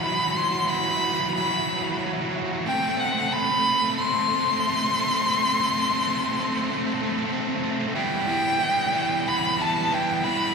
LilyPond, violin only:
\new Staff \with { instrumentName = "Violin" } { \time 4/4 \key e \minor \tempo 4 = 91 b''8 c'''8 b''4 b''4 r4 | g''8 fis''8 b''4 c'''2~ | c'''2. r4 | g''2 b''8 a''8 g''8 b''8 | }